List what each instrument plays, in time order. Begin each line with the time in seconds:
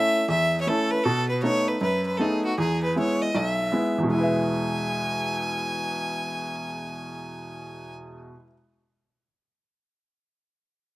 Already playing: upright piano A3 C#4 E4, fiddle E5
0.28 upright piano E2, fiddle E5
0.61 fiddle C#5
0.67 upright piano A3 C#4 E4, fiddle A4
0.91 fiddle B4
1.04 upright piano B2, fiddle A4
1.29 fiddle B4
1.43 upright piano A3 B3 D#4, fiddle C#5
1.68 fiddle B4
1.81 upright piano F#2, fiddle B4
2.07 fiddle B4
2.17 upright piano A3 B3 D#4, fiddle G#4 A4
2.45 fiddle F#4
2.58 upright piano E2, fiddle G#4
2.84 fiddle B4
2.96 upright piano G#3 B3 E4, fiddle C#5
3.22 fiddle D#5
3.35 upright piano B1, fiddle D#5
3.47 fiddle E5
3.72 upright piano G#3 B3 E4
3.98 upright piano E2
4.03 upright piano B2
4.08 upright piano G#3, fiddle G#5
4.13 upright piano E4
4.18 upright piano B4
4.23 upright piano E5